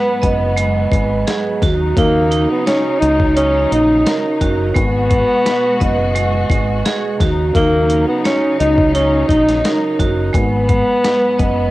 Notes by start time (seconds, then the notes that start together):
Already playing: G#2 F#3 G#3 B3 B4
0.22 F#1 D#5, kick, closed hi-hat
0.57 G#3, closed hi-hat
0.92 G#1 G#3, kick, closed hi-hat
1.27 G#4, snare, closed hi-hat
1.62 D#2 C#3 D#4 F#4, kick, snare, closed hi-hat
1.97 D#2 A#3 D#4, kick, closed hi-hat
2.31 D#4, closed hi-hat
2.51 B3
2.66 C#4 C#5, snare, closed hi-hat
3.00 C#2 D#4 D#5, closed hi-hat
3.20 kick
3.36 C#4 D#4, closed hi-hat
3.71 A#1 D#4, closed hi-hat
4.06 A#4, snare, closed hi-hat
4.41 F#1 F#4, kick, closed hi-hat
4.74 G#1 B2 G#3 B3 F#4, kick, closed hi-hat
5.10 G#3, kick, closed hi-hat
5.46 B4, snare, closed hi-hat
5.80 F#1 D#5, kick, closed hi-hat
6.15 G#3, closed hi-hat
6.50 G#1 G#3, kick, closed hi-hat
6.85 G#4, snare, closed hi-hat
7.20 D#2 C#3 F#3 D#4 F#4, kick, snare, closed hi-hat
7.55 D#2 A#3 D#4, kick, closed hi-hat
7.89 D#4, closed hi-hat
8.08 B3
8.24 C#4 C#5, snare, closed hi-hat
8.60 C#2 D#4 D#5, closed hi-hat
8.78 kick
8.94 C#4 D#4, closed hi-hat
9.28 A#1 D#4, kick, closed hi-hat
9.49 snare, closed hi-hat
9.64 A#4, snare, closed hi-hat
9.99 F#1 F#4, kick, closed hi-hat
10.33 G#1 G#2 F#3 G#3 B3, kick, closed hi-hat
10.68 G#3, kick, closed hi-hat
11.04 B4, snare, closed hi-hat
11.39 F#1 D#5, kick, closed hi-hat